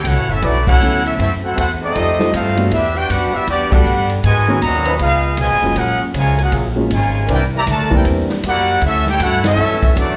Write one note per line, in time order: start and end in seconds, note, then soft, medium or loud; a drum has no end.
0.03 0.16 C#2 loud
0.03 0.28 A3 medium
0.03 0.27 C#4 medium
0.03 0.28 F#4 medium
0.03 kick soft
0.03 hi-hat pedal medium
0.03 ride medium
0.07 0.30 E4 medium
0.07 0.29 A4 medium
0.07 0.30 C#5 medium
0.07 0.30 F#5 medium
0.16 0.29 A1 medium
0.28 0.41 F#1 medium
0.28 0.41 A3 medium
0.28 0.42 C#4 medium
0.28 0.43 C#4 medium
0.28 0.42 E4 medium
0.28 0.43 F#4 medium
0.28 0.43 A4 medium
0.28 0.43 E5 medium
0.42 0.79 B1 medium
0.42 0.66 F#3 medium
0.42 0.59 F#3 medium
0.42 0.66 A3 medium
0.42 0.67 A3 medium
0.42 0.59 C#4 medium
0.42 0.66 D4 medium
0.42 0.59 E4 medium
0.42 0.67 E4 medium
0.42 0.67 F#4 medium
0.42 0.58 B4 medium
0.42 0.67 D5 medium
0.42 kick soft
0.42 ride medium
0.67 1.02 A3 medium
0.67 1.02 C#4 medium
0.67 1.03 E4 medium
0.67 1.02 F#4 medium
0.67 1.03 A4 medium
0.67 1.03 C#5 medium
0.67 1.03 F#5 loud
0.67 kick medium
0.67 crash medium
0.81 1.17 D2 loud
0.81 1.19 F#3 medium
0.81 1.19 A3 medium
0.81 1.19 B3 medium
0.81 1.19 C#4 medium
0.81 1.19 E4 medium
0.81 hi-hat pedal medium
1.04 1.16 A3 medium
1.04 1.17 C#4 medium
1.04 1.18 C#4 medium
1.04 1.16 E4 medium
1.04 1.19 F#4 medium
1.04 1.18 A4 medium
1.04 1.19 E5 medium
1.04 ride medium
1.17 1.56 F#2 loud
1.17 1.28 A3 medium
1.17 1.28 C4 medium
1.17 1.29 E4 medium
1.17 kick soft
1.17 ride medium
1.22 1.32 C4 medium
1.22 1.32 F#4 medium
1.22 1.32 A4 medium
1.22 1.32 E5 medium
1.42 1.54 A3 medium
1.42 1.54 C4 medium
1.42 1.57 E4 medium
1.42 1.54 F#4 medium
1.42 1.56 A4 medium
1.42 1.57 C5 medium
1.42 1.57 F#5 medium
1.55 1.94 E2 loud
1.55 1.67 A3 medium
1.55 1.66 C4 medium
1.55 1.67 F#4 medium
1.55 kick soft
1.55 hi-hat pedal medium
1.55 ride medium
1.60 1.70 E4 medium
1.60 1.70 A4 medium
1.60 1.70 C5 medium
1.60 1.70 F#5 medium
1.80 2.29 A3 medium
1.80 2.29 C4 medium
1.80 2.31 C4 medium
1.80 2.29 D#4 medium
1.84 2.31 G4 medium
1.84 2.31 A4 medium
1.84 2.31 D#5 loud
1.94 2.32 F2 medium
1.94 2.10 G3 medium
1.94 2.11 D#4 medium
1.94 2.11 F4 medium
1.94 2.11 A4 medium
1.94 kick soft
1.94 ride medium
2.19 2.32 G3 medium
2.19 2.32 A3 medium
2.19 2.32 C4 medium
2.19 2.32 D#4 medium
2.19 2.32 F4 medium
2.19 snare medium
2.32 2.70 G2 loud
2.32 2.68 A3 medium
2.32 2.68 C4 medium
2.32 2.70 D#4 medium
2.32 2.68 F4 medium
2.32 2.70 A4 medium
2.32 2.70 C5 medium
2.32 2.70 F5 medium
2.32 kick soft
2.32 hi-hat pedal medium
2.32 ride medium
2.56 2.69 G3 medium
2.56 2.69 A3 medium
2.56 2.70 B3 medium
2.56 2.70 D4 medium
2.56 2.70 F#4 medium
2.56 ride medium
2.70 3.08 E2 medium
2.70 2.93 G3 medium
2.70 2.93 B3 medium
2.70 2.95 D4 medium
2.70 2.93 E4 medium
2.70 2.95 G4 medium
2.70 2.95 E5 loud
2.70 kick soft
2.70 ride medium
2.74 2.95 B4 medium
2.95 3.08 B3 medium
2.95 3.08 D4 medium
2.95 3.10 D4 medium
2.95 3.10 F#4 medium
2.95 3.09 G4 medium
2.95 3.10 B4 medium
2.95 3.10 G5 loud
3.09 3.32 F#2 loud
3.09 3.33 B3 medium
3.09 3.33 D4 medium
3.09 3.33 F#4 medium
3.09 3.34 G4 medium
3.09 3.33 B4 medium
3.09 3.34 F#5 medium
3.09 kick soft
3.09 hi-hat pedal medium
3.09 ride medium
3.33 3.47 G3 medium
3.33 3.47 B3 medium
3.33 3.48 D4 medium
3.33 3.48 E4 medium
3.33 3.48 G4 medium
3.33 3.48 B4 medium
3.33 3.48 E5 medium
3.33 muted upright bass stroke soft
3.47 3.83 E2 medium
3.47 3.70 G3 medium
3.47 3.70 B3 medium
3.47 3.71 B3 medium
3.47 3.70 D4 medium
3.47 3.71 F#4 medium
3.47 3.71 G4 medium
3.47 3.71 D5 loud
3.47 kick soft
3.47 ride medium
3.70 4.20 G3 loud
3.70 3.84 G3 medium
3.70 3.84 A3 medium
3.70 3.84 B3 medium
3.70 4.10 B3 medium
3.70 4.20 D4 loud
3.70 3.84 D4 medium
3.70 4.10 D4 medium
3.70 4.10 D4 loud
3.70 3.84 F#4 medium
3.70 4.20 G4 loud
3.70 4.10 G4 medium
3.70 4.11 G4 medium
3.70 4.20 A4 loud
3.70 4.11 B4 loud
3.70 4.10 F#5 loud
3.70 kick medium
3.70 crash medium
3.84 4.22 G2 loud
3.84 hi-hat pedal medium
4.09 ride medium
4.24 4.61 G#2 medium
4.24 4.60 B2 medium
4.24 4.60 D#3 medium
4.24 4.60 G#3 loud
4.24 4.60 F#4 medium
4.24 4.60 B4 medium
4.24 4.60 D#5 medium
4.24 4.60 G#5 loud
4.24 kick soft
4.24 ride medium
4.48 4.60 D#3 medium
4.48 4.58 F#3 loud
4.48 4.60 A#3 medium
4.48 4.57 B3 medium
4.48 4.61 B3 medium
4.48 4.61 C#4 medium
4.48 4.58 C#4 medium
4.48 4.61 F#4 medium
4.48 4.57 A#4 loud
4.62 4.99 D#2 loud
4.62 4.98 A#2 loud
4.62 4.98 D#3 medium
4.62 4.98 F#3 loud
4.62 4.98 F#4 loud
4.62 4.98 B4 medium
4.62 4.98 D#5 medium
4.62 4.97 A#5 loud
4.62 kick soft
4.62 hi-hat pedal medium
4.62 ride medium
4.85 4.95 F3 loud
4.85 4.95 C#4 medium
4.85 4.96 D#4 loud
4.85 4.95 B4 loud
4.85 ride medium
4.99 5.37 C#2 medium
4.99 5.35 G#3 medium
4.99 5.35 B3 medium
4.99 5.37 D#4 medium
4.99 5.35 F4 medium
4.99 5.37 G#4 medium
4.99 5.37 B4 medium
4.99 5.37 F5 loud
4.99 kick soft
4.99 ride medium
5.37 5.50 B1 medium
5.37 5.76 B2 medium
5.37 5.76 F3 medium
5.37 5.76 G#3 medium
5.37 5.78 F4 medium
5.37 5.78 D#5 medium
5.37 5.78 G#5 loud
5.37 kick soft
5.37 hi-hat pedal medium
5.37 ride medium
5.41 5.78 B4 medium
5.50 5.62 G#1 medium
5.63 5.75 F1 medium
5.63 6.12 F#3 medium
5.63 6.12 G#3 medium
5.63 6.12 A#3 medium
5.63 6.12 C#4 medium
5.63 6.12 F4 medium
5.76 5.98 A#1 medium
5.76 6.00 A#3 medium
5.76 6.00 C#4 medium
5.76 6.01 C#4 medium
5.76 6.00 F#4 medium
5.76 6.02 G#4 medium
5.76 6.02 A#4 medium
5.76 6.02 F#5 medium
5.76 kick soft
5.76 ride medium
5.99 muted upright bass stroke soft
6.14 6.51 C#2 loud
6.14 6.37 C#3 medium
6.14 6.37 F3 medium
6.14 6.37 G#3 medium
6.14 kick soft
6.14 hi-hat pedal medium
6.14 ride medium
6.18 6.39 F4 medium
6.18 6.39 A#4 medium
6.18 6.39 C#5 medium
6.18 6.39 G#5 medium
6.38 6.52 A#3 medium
6.38 6.53 C#4 medium
6.38 6.52 F#4 medium
6.38 ride medium
6.43 6.55 C#4 medium
6.43 6.55 G#4 medium
6.43 6.55 A#4 medium
6.43 6.55 F#5 medium
6.52 6.89 A#1 medium
6.52 6.69 F#3 medium
6.52 6.69 A#3 medium
6.52 6.69 F4 medium
6.52 6.68 G#4 loud
6.52 kick soft
6.52 ride medium
6.75 6.89 F#3 medium
6.75 6.89 G#3 medium
6.75 6.89 A#3 medium
6.75 6.89 C#4 medium
6.75 6.89 F4 medium
6.90 7.27 G#1 loud
6.90 7.27 C#3 medium
6.90 7.27 F3 medium
6.90 7.26 G#3 medium
6.90 kick soft
6.90 hi-hat pedal medium
6.90 ride medium
6.94 7.28 F4 medium
6.94 7.28 A#4 medium
6.94 7.28 C#5 medium
6.94 7.28 G#5 medium
7.27 7.66 C2 loud
7.27 7.44 E3 medium
7.27 7.40 A#3 medium
7.27 7.44 C4 medium
7.27 7.44 D4 medium
7.27 7.41 E4 medium
7.27 7.41 G4 medium
7.27 7.44 A#4 loud
7.27 kick soft
7.27 ride medium
7.34 7.44 E4 medium
7.34 7.44 A#4 medium
7.34 7.44 D5 medium
7.34 7.44 G5 medium
7.55 7.61 E3 medium
7.55 7.61 G3 medium
7.55 7.61 A#3 medium
7.55 7.62 G4 medium
7.55 7.63 D5 loud
7.55 7.63 E5 medium
7.55 7.63 A#5 loud
7.67 8.04 D2 loud
7.67 7.91 A3 medium
7.67 kick soft
7.67 snare soft
7.67 hi-hat pedal medium
7.67 ride medium
7.71 7.92 F#4 medium
7.71 7.92 A#4 medium
7.71 7.92 D5 medium
7.71 7.92 A5 loud
7.89 8.40 E3 loud
7.89 8.40 G3 medium
7.89 8.40 A#3 medium
7.89 8.05 A#3 medium
7.89 8.40 C4 loud
7.89 8.40 C4 medium
7.89 8.40 D4 loud
7.89 8.40 D4 medium
7.89 8.40 E4 medium
7.89 8.05 E4 medium
7.89 8.05 G4 medium
7.89 8.40 A#4 loud
7.89 kick medium
7.96 8.07 E4 medium
7.96 8.07 A#4 medium
7.96 8.07 D5 medium
7.96 8.07 G5 medium
8.05 8.42 E2 medium
8.05 kick soft
8.05 ride medium
8.30 snare medium
8.43 8.81 F#2 loud
8.43 8.80 A#3 medium
8.43 8.80 F#4 medium
8.43 8.80 G4 medium
8.43 kick soft
8.43 hi-hat pedal medium
8.43 ride medium
8.48 8.82 E4 medium
8.48 8.81 A#4 medium
8.48 8.81 D5 loud
8.48 8.81 F#5 loud
8.68 ride medium
8.81 9.18 D2 loud
8.81 9.06 A3 loud
8.81 9.07 C#4 medium
8.81 9.06 E4 medium
8.81 kick soft
8.81 ride medium
8.86 9.08 C#4 medium
8.86 9.08 F#4 medium
8.86 9.08 A4 medium
8.86 9.08 E5 loud
9.06 9.21 E4 medium
9.06 9.19 G4 medium
9.06 9.21 C#5 medium
9.06 9.21 G5 loud
9.06 snare medium
9.10 9.21 A4 loud
9.20 9.56 G2 loud
9.20 9.43 A3 loud
9.20 9.42 C#4 medium
9.20 9.44 E4 medium
9.20 9.43 F#4 medium
9.20 9.44 A4 medium
9.20 9.44 C#5 medium
9.20 9.44 F#5 loud
9.20 kick soft
9.20 hi-hat pedal medium
9.20 ride medium
9.44 9.93 A3 loud
9.44 9.93 C#4 medium
9.44 9.92 E4 medium
9.44 9.94 F#4 medium
9.44 9.94 A4 loud
9.44 9.94 E5 loud
9.44 snare loud
9.44 ride medium
9.48 9.94 C#4 loud
9.55 9.94 F#2 medium
9.55 10.14 E3 medium
9.55 10.14 B3 medium
9.55 10.14 C#4 medium
9.55 10.14 F#4 medium
9.82 kick medium
9.82 ride medium
9.96 10.17 E2 loud
9.96 10.17 F#3 medium
9.96 10.17 A3 medium
9.96 10.17 D4 medium
9.96 10.17 E4 medium
9.96 10.17 D5 loud
9.96 kick soft
9.96 hi-hat pedal medium
9.96 ride medium
10.00 10.17 F#4 medium